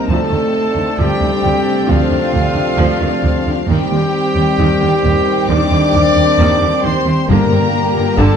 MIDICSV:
0, 0, Header, 1, 11, 480
1, 0, Start_track
1, 0, Tempo, 899415
1, 51, Time_signature, 4, 2, 24, 8
1, 4465, End_track
2, 0, Start_track
2, 0, Title_t, "Violin section"
2, 0, Program_c, 0, 48
2, 50, Note_on_c, 0, 81, 63
2, 521, Note_off_c, 0, 81, 0
2, 540, Note_on_c, 0, 79, 76
2, 1016, Note_off_c, 0, 79, 0
2, 1020, Note_on_c, 0, 77, 78
2, 1975, Note_off_c, 0, 77, 0
2, 1975, Note_on_c, 0, 79, 76
2, 2926, Note_on_c, 0, 86, 98
2, 2933, Note_off_c, 0, 79, 0
2, 3634, Note_off_c, 0, 86, 0
2, 3657, Note_on_c, 0, 84, 78
2, 3894, Note_off_c, 0, 84, 0
2, 3902, Note_on_c, 0, 82, 85
2, 4367, Note_off_c, 0, 82, 0
2, 4381, Note_on_c, 0, 81, 86
2, 4465, Note_off_c, 0, 81, 0
2, 4465, End_track
3, 0, Start_track
3, 0, Title_t, "Woodwind section"
3, 0, Program_c, 1, 71
3, 56, Note_on_c, 1, 57, 73
3, 56, Note_on_c, 1, 74, 69
3, 57, Note_on_c, 1, 69, 72
3, 57, Note_on_c, 1, 72, 62
3, 1888, Note_off_c, 1, 57, 0
3, 1888, Note_off_c, 1, 69, 0
3, 1888, Note_off_c, 1, 72, 0
3, 1888, Note_off_c, 1, 74, 0
3, 1978, Note_on_c, 1, 72, 80
3, 1978, Note_on_c, 1, 79, 70
3, 1979, Note_on_c, 1, 67, 71
3, 1980, Note_on_c, 1, 60, 73
3, 3873, Note_off_c, 1, 72, 0
3, 3893, Note_off_c, 1, 67, 0
3, 3894, Note_off_c, 1, 79, 0
3, 3895, Note_off_c, 1, 60, 0
3, 3898, Note_on_c, 1, 55, 88
3, 3899, Note_on_c, 1, 67, 83
3, 3900, Note_on_c, 1, 79, 85
3, 3902, Note_on_c, 1, 74, 86
3, 4465, Note_off_c, 1, 55, 0
3, 4465, Note_off_c, 1, 67, 0
3, 4465, Note_off_c, 1, 74, 0
3, 4465, Note_off_c, 1, 79, 0
3, 4465, End_track
4, 0, Start_track
4, 0, Title_t, "Trumpet section"
4, 0, Program_c, 2, 61
4, 52, Note_on_c, 2, 69, 84
4, 522, Note_off_c, 2, 69, 0
4, 530, Note_on_c, 2, 67, 85
4, 1005, Note_on_c, 2, 65, 85
4, 1011, Note_off_c, 2, 67, 0
4, 1883, Note_off_c, 2, 65, 0
4, 1974, Note_on_c, 2, 67, 90
4, 2913, Note_off_c, 2, 67, 0
4, 2926, Note_on_c, 2, 74, 112
4, 3634, Note_off_c, 2, 74, 0
4, 3647, Note_on_c, 2, 72, 82
4, 3889, Note_off_c, 2, 72, 0
4, 3889, Note_on_c, 2, 70, 89
4, 4360, Note_off_c, 2, 70, 0
4, 4364, Note_on_c, 2, 69, 90
4, 4465, Note_off_c, 2, 69, 0
4, 4465, End_track
5, 0, Start_track
5, 0, Title_t, "Violin section"
5, 0, Program_c, 3, 48
5, 0, Note_on_c, 3, 63, 54
5, 48, Note_on_c, 3, 60, 61
5, 508, Note_off_c, 3, 63, 0
5, 527, Note_on_c, 3, 62, 72
5, 1948, Note_off_c, 3, 60, 0
5, 1965, Note_on_c, 3, 60, 65
5, 1965, Note_on_c, 3, 67, 64
5, 1969, Note_off_c, 3, 62, 0
5, 3866, Note_off_c, 3, 60, 0
5, 3866, Note_off_c, 3, 67, 0
5, 3888, Note_on_c, 3, 67, 69
5, 3889, Note_on_c, 3, 58, 73
5, 4465, Note_off_c, 3, 58, 0
5, 4465, Note_off_c, 3, 67, 0
5, 4465, End_track
6, 0, Start_track
6, 0, Title_t, "French horn section"
6, 0, Program_c, 4, 60
6, 54, Note_on_c, 4, 57, 80
6, 531, Note_on_c, 4, 55, 66
6, 533, Note_off_c, 4, 57, 0
6, 1011, Note_off_c, 4, 55, 0
6, 1012, Note_on_c, 4, 53, 67
6, 1952, Note_off_c, 4, 53, 0
6, 1982, Note_on_c, 4, 55, 87
6, 2847, Note_off_c, 4, 55, 0
6, 2937, Note_on_c, 4, 62, 99
6, 3640, Note_off_c, 4, 62, 0
6, 3647, Note_on_c, 4, 60, 70
6, 3877, Note_on_c, 4, 58, 96
6, 3889, Note_off_c, 4, 60, 0
6, 4354, Note_off_c, 4, 58, 0
6, 4359, Note_on_c, 4, 69, 78
6, 4465, Note_off_c, 4, 69, 0
6, 4465, End_track
7, 0, Start_track
7, 0, Title_t, "Viola section"
7, 0, Program_c, 5, 48
7, 47, Note_on_c, 5, 57, 57
7, 48, Note_on_c, 5, 53, 64
7, 159, Note_on_c, 5, 51, 36
7, 161, Note_off_c, 5, 53, 0
7, 202, Note_off_c, 5, 51, 0
7, 403, Note_on_c, 5, 50, 49
7, 446, Note_off_c, 5, 50, 0
7, 523, Note_on_c, 5, 53, 63
7, 638, Note_off_c, 5, 53, 0
7, 642, Note_on_c, 5, 51, 43
7, 685, Note_off_c, 5, 51, 0
7, 762, Note_on_c, 5, 53, 55
7, 805, Note_off_c, 5, 53, 0
7, 997, Note_on_c, 5, 53, 61
7, 1115, Note_off_c, 5, 53, 0
7, 1123, Note_on_c, 5, 51, 52
7, 1166, Note_off_c, 5, 51, 0
7, 1245, Note_on_c, 5, 53, 43
7, 1287, Note_off_c, 5, 53, 0
7, 1362, Note_on_c, 5, 50, 43
7, 1405, Note_off_c, 5, 50, 0
7, 1483, Note_on_c, 5, 53, 86
7, 1598, Note_off_c, 5, 53, 0
7, 1603, Note_on_c, 5, 51, 58
7, 1646, Note_off_c, 5, 51, 0
7, 1722, Note_on_c, 5, 53, 51
7, 1765, Note_off_c, 5, 53, 0
7, 1848, Note_on_c, 5, 50, 61
7, 1891, Note_off_c, 5, 50, 0
7, 1948, Note_off_c, 5, 57, 0
7, 1971, Note_on_c, 5, 51, 64
7, 1973, Note_on_c, 5, 55, 63
7, 2083, Note_off_c, 5, 51, 0
7, 2092, Note_on_c, 5, 50, 39
7, 2135, Note_off_c, 5, 50, 0
7, 2331, Note_on_c, 5, 48, 46
7, 2374, Note_off_c, 5, 48, 0
7, 2448, Note_on_c, 5, 51, 71
7, 2561, Note_off_c, 5, 51, 0
7, 2567, Note_on_c, 5, 50, 50
7, 2609, Note_off_c, 5, 50, 0
7, 2692, Note_on_c, 5, 51, 54
7, 2735, Note_off_c, 5, 51, 0
7, 2933, Note_on_c, 5, 51, 72
7, 3043, Note_off_c, 5, 51, 0
7, 3053, Note_on_c, 5, 50, 57
7, 3096, Note_off_c, 5, 50, 0
7, 3167, Note_on_c, 5, 51, 55
7, 3210, Note_off_c, 5, 51, 0
7, 3290, Note_on_c, 5, 48, 49
7, 3333, Note_off_c, 5, 48, 0
7, 3411, Note_on_c, 5, 51, 87
7, 3522, Note_off_c, 5, 51, 0
7, 3536, Note_on_c, 5, 50, 61
7, 3579, Note_off_c, 5, 50, 0
7, 3654, Note_on_c, 5, 51, 54
7, 3697, Note_off_c, 5, 51, 0
7, 3772, Note_on_c, 5, 48, 69
7, 3814, Note_off_c, 5, 48, 0
7, 3870, Note_off_c, 5, 55, 0
7, 3895, Note_on_c, 5, 50, 74
7, 3898, Note_on_c, 5, 55, 69
7, 4004, Note_off_c, 5, 50, 0
7, 4010, Note_on_c, 5, 48, 48
7, 4053, Note_off_c, 5, 48, 0
7, 4244, Note_on_c, 5, 50, 60
7, 4287, Note_off_c, 5, 50, 0
7, 4362, Note_on_c, 5, 50, 90
7, 4465, Note_off_c, 5, 50, 0
7, 4465, Note_off_c, 5, 55, 0
7, 4465, End_track
8, 0, Start_track
8, 0, Title_t, "Trombone section"
8, 0, Program_c, 6, 61
8, 48, Note_on_c, 6, 48, 67
8, 54, Note_on_c, 6, 60, 66
8, 1948, Note_off_c, 6, 48, 0
8, 1951, Note_off_c, 6, 60, 0
8, 1970, Note_on_c, 6, 51, 70
8, 1972, Note_on_c, 6, 60, 69
8, 3800, Note_off_c, 6, 51, 0
8, 3800, Note_off_c, 6, 60, 0
8, 3891, Note_on_c, 6, 50, 82
8, 3893, Note_on_c, 6, 46, 82
8, 4465, Note_off_c, 6, 46, 0
8, 4465, Note_off_c, 6, 50, 0
8, 4465, End_track
9, 0, Start_track
9, 0, Title_t, "Timpani"
9, 0, Program_c, 7, 47
9, 3895, Note_on_c, 7, 43, 72
9, 4465, Note_off_c, 7, 43, 0
9, 4465, End_track
10, 0, Start_track
10, 0, Title_t, "Cello section"
10, 0, Program_c, 8, 48
10, 51, Note_on_c, 8, 38, 58
10, 94, Note_off_c, 8, 38, 0
10, 168, Note_on_c, 8, 38, 50
10, 211, Note_off_c, 8, 38, 0
10, 412, Note_on_c, 8, 38, 44
10, 454, Note_off_c, 8, 38, 0
10, 531, Note_on_c, 8, 38, 64
10, 573, Note_off_c, 8, 38, 0
10, 652, Note_on_c, 8, 38, 51
10, 694, Note_off_c, 8, 38, 0
10, 770, Note_on_c, 8, 38, 49
10, 812, Note_off_c, 8, 38, 0
10, 1012, Note_on_c, 8, 38, 71
10, 1055, Note_off_c, 8, 38, 0
10, 1126, Note_on_c, 8, 38, 52
10, 1168, Note_off_c, 8, 38, 0
10, 1246, Note_on_c, 8, 38, 48
10, 1289, Note_off_c, 8, 38, 0
10, 1363, Note_on_c, 8, 38, 51
10, 1405, Note_off_c, 8, 38, 0
10, 1484, Note_on_c, 8, 38, 73
10, 1526, Note_off_c, 8, 38, 0
10, 1610, Note_on_c, 8, 38, 49
10, 1652, Note_off_c, 8, 38, 0
10, 1722, Note_on_c, 8, 38, 58
10, 1765, Note_off_c, 8, 38, 0
10, 1846, Note_on_c, 8, 38, 46
10, 1889, Note_off_c, 8, 38, 0
10, 1960, Note_on_c, 8, 39, 70
10, 2003, Note_off_c, 8, 39, 0
10, 2087, Note_on_c, 8, 39, 57
10, 2130, Note_off_c, 8, 39, 0
10, 2323, Note_on_c, 8, 39, 55
10, 2365, Note_off_c, 8, 39, 0
10, 2447, Note_on_c, 8, 39, 72
10, 2490, Note_off_c, 8, 39, 0
10, 2567, Note_on_c, 8, 39, 53
10, 2610, Note_off_c, 8, 39, 0
10, 2685, Note_on_c, 8, 39, 59
10, 2728, Note_off_c, 8, 39, 0
10, 2923, Note_on_c, 8, 39, 80
10, 2965, Note_off_c, 8, 39, 0
10, 3044, Note_on_c, 8, 39, 63
10, 3087, Note_off_c, 8, 39, 0
10, 3166, Note_on_c, 8, 39, 56
10, 3209, Note_off_c, 8, 39, 0
10, 3286, Note_on_c, 8, 39, 56
10, 3329, Note_off_c, 8, 39, 0
10, 3406, Note_on_c, 8, 39, 90
10, 3449, Note_off_c, 8, 39, 0
10, 3529, Note_on_c, 8, 39, 55
10, 3571, Note_off_c, 8, 39, 0
10, 3648, Note_on_c, 8, 39, 63
10, 3690, Note_off_c, 8, 39, 0
10, 3766, Note_on_c, 8, 39, 55
10, 3809, Note_off_c, 8, 39, 0
10, 3888, Note_on_c, 8, 43, 85
10, 3930, Note_off_c, 8, 43, 0
10, 4005, Note_on_c, 8, 43, 63
10, 4048, Note_off_c, 8, 43, 0
10, 4248, Note_on_c, 8, 43, 57
10, 4290, Note_off_c, 8, 43, 0
10, 4360, Note_on_c, 8, 43, 76
10, 4403, Note_off_c, 8, 43, 0
10, 4465, End_track
11, 0, Start_track
11, 0, Title_t, "Double bass section"
11, 0, Program_c, 10, 48
11, 52, Note_on_c, 10, 38, 59
11, 95, Note_off_c, 10, 38, 0
11, 531, Note_on_c, 10, 38, 64
11, 573, Note_off_c, 10, 38, 0
11, 768, Note_on_c, 10, 38, 49
11, 811, Note_off_c, 10, 38, 0
11, 1010, Note_on_c, 10, 38, 64
11, 1053, Note_off_c, 10, 38, 0
11, 1246, Note_on_c, 10, 38, 53
11, 1288, Note_off_c, 10, 38, 0
11, 1489, Note_on_c, 10, 38, 73
11, 1532, Note_off_c, 10, 38, 0
11, 1729, Note_on_c, 10, 38, 53
11, 1772, Note_off_c, 10, 38, 0
11, 1971, Note_on_c, 10, 39, 67
11, 2013, Note_off_c, 10, 39, 0
11, 2451, Note_on_c, 10, 39, 72
11, 2494, Note_off_c, 10, 39, 0
11, 2693, Note_on_c, 10, 39, 54
11, 2736, Note_off_c, 10, 39, 0
11, 2933, Note_on_c, 10, 39, 74
11, 2976, Note_off_c, 10, 39, 0
11, 3170, Note_on_c, 10, 39, 62
11, 3213, Note_off_c, 10, 39, 0
11, 3414, Note_on_c, 10, 39, 81
11, 3457, Note_off_c, 10, 39, 0
11, 3649, Note_on_c, 10, 39, 57
11, 3692, Note_off_c, 10, 39, 0
11, 3889, Note_on_c, 10, 31, 75
11, 3931, Note_off_c, 10, 31, 0
11, 4366, Note_on_c, 10, 31, 85
11, 4409, Note_off_c, 10, 31, 0
11, 4465, End_track
0, 0, End_of_file